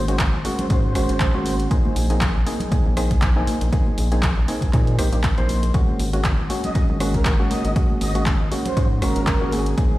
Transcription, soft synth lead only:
0, 0, Header, 1, 2, 480
1, 0, Start_track
1, 0, Tempo, 504202
1, 1627, Time_signature, 4, 2, 24, 8
1, 9506, End_track
2, 0, Start_track
2, 0, Title_t, "Soft synth lead"
2, 0, Program_c, 0, 80
2, 79, Note_on_c, 0, 72, 78
2, 148, Note_off_c, 0, 72, 0
2, 559, Note_on_c, 0, 72, 88
2, 628, Note_off_c, 0, 72, 0
2, 666, Note_on_c, 0, 72, 76
2, 752, Note_off_c, 0, 72, 0
2, 799, Note_on_c, 0, 72, 103
2, 1466, Note_off_c, 0, 72, 0
2, 6320, Note_on_c, 0, 75, 93
2, 6512, Note_off_c, 0, 75, 0
2, 6800, Note_on_c, 0, 70, 87
2, 6869, Note_off_c, 0, 70, 0
2, 6908, Note_on_c, 0, 70, 75
2, 6993, Note_off_c, 0, 70, 0
2, 7147, Note_on_c, 0, 75, 96
2, 7348, Note_off_c, 0, 75, 0
2, 7628, Note_on_c, 0, 75, 92
2, 7828, Note_off_c, 0, 75, 0
2, 8240, Note_on_c, 0, 72, 93
2, 8432, Note_off_c, 0, 72, 0
2, 8588, Note_on_c, 0, 70, 96
2, 9046, Note_off_c, 0, 70, 0
2, 9068, Note_on_c, 0, 68, 90
2, 9152, Note_off_c, 0, 68, 0
2, 9200, Note_on_c, 0, 68, 75
2, 9268, Note_off_c, 0, 68, 0
2, 9506, End_track
0, 0, End_of_file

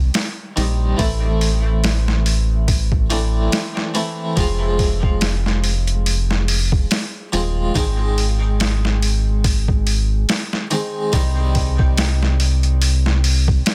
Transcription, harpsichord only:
0, 0, Header, 1, 2, 480
1, 0, Start_track
1, 0, Key_signature, -4, "minor"
1, 0, Tempo, 845070
1, 562, Time_signature, 4, 2, 24, 8
1, 7808, End_track
2, 0, Start_track
2, 0, Title_t, "Harpsichord"
2, 0, Program_c, 0, 6
2, 0, Note_on_c, 0, 51, 89
2, 0, Note_on_c, 0, 55, 83
2, 0, Note_on_c, 0, 60, 76
2, 0, Note_on_c, 0, 63, 97
2, 292, Note_off_c, 0, 51, 0
2, 295, Note_off_c, 0, 55, 0
2, 300, Note_off_c, 0, 60, 0
2, 303, Note_off_c, 0, 63, 0
2, 318, Note_on_c, 0, 51, 74
2, 323, Note_on_c, 0, 55, 68
2, 325, Note_on_c, 0, 60, 64
2, 327, Note_on_c, 0, 63, 79
2, 535, Note_off_c, 0, 51, 0
2, 537, Note_off_c, 0, 55, 0
2, 538, Note_off_c, 0, 60, 0
2, 540, Note_off_c, 0, 63, 0
2, 550, Note_on_c, 0, 52, 88
2, 557, Note_on_c, 0, 57, 82
2, 563, Note_on_c, 0, 60, 76
2, 570, Note_on_c, 0, 64, 99
2, 1735, Note_off_c, 0, 52, 0
2, 1739, Note_off_c, 0, 57, 0
2, 1741, Note_off_c, 0, 60, 0
2, 1745, Note_off_c, 0, 64, 0
2, 1760, Note_on_c, 0, 52, 69
2, 1763, Note_on_c, 0, 57, 69
2, 1765, Note_on_c, 0, 60, 67
2, 1771, Note_on_c, 0, 62, 87
2, 2216, Note_off_c, 0, 52, 0
2, 2217, Note_off_c, 0, 57, 0
2, 2218, Note_off_c, 0, 60, 0
2, 2221, Note_off_c, 0, 62, 0
2, 2237, Note_on_c, 0, 52, 78
2, 2241, Note_on_c, 0, 57, 72
2, 2244, Note_on_c, 0, 60, 72
2, 2249, Note_on_c, 0, 64, 85
2, 2454, Note_off_c, 0, 52, 0
2, 2456, Note_off_c, 0, 57, 0
2, 2458, Note_off_c, 0, 60, 0
2, 2460, Note_off_c, 0, 64, 0
2, 2475, Note_on_c, 0, 53, 94
2, 2482, Note_on_c, 0, 56, 81
2, 2489, Note_on_c, 0, 60, 85
2, 2494, Note_on_c, 0, 65, 99
2, 4133, Note_off_c, 0, 53, 0
2, 4137, Note_off_c, 0, 56, 0
2, 4140, Note_off_c, 0, 60, 0
2, 4143, Note_off_c, 0, 65, 0
2, 4160, Note_on_c, 0, 53, 75
2, 4164, Note_on_c, 0, 56, 66
2, 4167, Note_on_c, 0, 60, 63
2, 4170, Note_on_c, 0, 65, 83
2, 4376, Note_off_c, 0, 53, 0
2, 4378, Note_off_c, 0, 56, 0
2, 4379, Note_off_c, 0, 60, 0
2, 4381, Note_off_c, 0, 65, 0
2, 4399, Note_on_c, 0, 51, 90
2, 4404, Note_on_c, 0, 56, 85
2, 4408, Note_on_c, 0, 60, 77
2, 4417, Note_on_c, 0, 63, 103
2, 6055, Note_off_c, 0, 51, 0
2, 6058, Note_off_c, 0, 56, 0
2, 6060, Note_off_c, 0, 60, 0
2, 6064, Note_off_c, 0, 63, 0
2, 6081, Note_on_c, 0, 51, 75
2, 6087, Note_on_c, 0, 56, 70
2, 6088, Note_on_c, 0, 60, 67
2, 6093, Note_on_c, 0, 63, 79
2, 6296, Note_off_c, 0, 51, 0
2, 6299, Note_off_c, 0, 56, 0
2, 6300, Note_off_c, 0, 60, 0
2, 6302, Note_off_c, 0, 63, 0
2, 6316, Note_on_c, 0, 51, 91
2, 6321, Note_on_c, 0, 55, 84
2, 6329, Note_on_c, 0, 60, 84
2, 6334, Note_on_c, 0, 63, 98
2, 7808, Note_off_c, 0, 51, 0
2, 7808, Note_off_c, 0, 55, 0
2, 7808, Note_off_c, 0, 60, 0
2, 7808, Note_off_c, 0, 63, 0
2, 7808, End_track
0, 0, End_of_file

